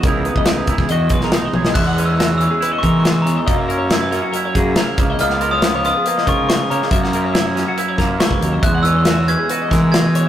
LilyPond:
<<
  \new Staff \with { instrumentName = "Glockenspiel" } { \time 4/4 \key e \lydian \tempo 4 = 140 r1 | fis'''8. e'''8. e'''4 cis'''8 cis'''8 ais''8~ | ais''4. r2 r8 | eis'''8. dis'''8. dis'''4 cis'''8 cis'''8 ais''8~ |
ais''4. r4. cis'''4 | fis'''8 e'''4 gis'''4. gis'''4 | }
  \new Staff \with { instrumentName = "Clean electric guitar" } { \time 4/4 \key e \lydian ais'8 b'16 dis''16 ais'16 b'16 ais'16 gis'16 dis''8 b'16 ais'16 b'16 dis''16 cis''16 dis''16 | e''16 fis''16 b'16 dis''16 e''16 cis''16 b'16 gis'16 b'16 dis''16 ais'8 b'8 cis''16 dis''16 | dis''16 e''16 ais'16 cis''16 e''16 b'16 ais'16 fis'16 ais'16 cis''16 gis'8 ais'8 b'16 dis''16 | dis''16 eis''16 ais'16 cis''16 eis''16 cis''16 b'16 gis'16 b'16 dis''16 ais'8 b'8 cis''16 dis''16 |
e''16 fis''16 ais'16 cis''16 e''16 cis''16 ais'16 fis'16 ais'16 cis''16 ais'8 b'8 cis''16 dis''16 | e''16 fis''16 b'16 dis''16 e''16 cis''16 b'16 gis'16 b'16 dis''16 ais'8 b'8 cis''16 r16 | }
  \new Staff \with { instrumentName = "Clean electric guitar" } { \time 4/4 \key e \lydian << { <e b dis' e'>8 b8 dis'8 e'8 fis'8 gis8 dis'8 gis'8 | gis8 cis'8 fis'8 cis'8 e'16 fis'16 gis4. | ais8 cis'8 e'8 cis'8 e'8 ais8 e'8 ais8 | b8 eis'8 b8 eis'8 ais8 eis'4 ais8 |
ais8 cis'8 e'8 cis'8 e'8 ais4. | gis8 cis'8 fis'8 cis'8 fis'8 gis8 fis'4 | } \\ { cis4. e8 e,4. e8 | e,4. e2 e,8 | fis,4. fis4. cis8 cis8~ | cis4 eis4. gis,4 cis8 |
fis,4. fis4. gis,8 fis,8 | e,4. e4. b,4 | } >> }
  \new Staff \with { instrumentName = "Fingered electric bass" } { \clef bass \time 4/4 \key e \lydian cis,8. cis,8. cis,16 cis,16 e,8 b,,4 b,,8 | e,2 r8 e4. | fis,2 r8 fis,8 r8 cis,8 | cis,2 r8 cis4. |
fis,2 r8 fis,8 r8 dis,8 | e,2 r8 e4. | }
  \new DrumStaff \with { instrumentName = "Drums" } \drummode { \time 4/4 <hh bd>8 hh16 bd16 <hh sn>8 <hh bd>16 bd16 hh8 <hh bd>16 sn16 <hh sn>8 tommh16 sn16 | <cymc bd>8 hh8 <hh sn>8 hh8 hh8 <hh bd>8 <hh sn>8 hh8 | <hh bd>8 hh8 <hh sn>8 hh8 hh8 <hh bd>8 <hh sn>8 <hh bd>8 | hh16 sn16 hh8 <hh sn>8 hh8 hh16 sn16 <hh bd>8 <hh sn>8 hh16 sn16 |
<hh bd>16 sn16 hh8 <hh sn>8 <hh sn>8 hh8 <hh bd sn>8 <hh sn>16 bd16 hh8 | <hh bd>8 hh8 <hh sn>8 hh8 hh8 <hh bd sn>8 <hh sn>8 hh8 | }
>>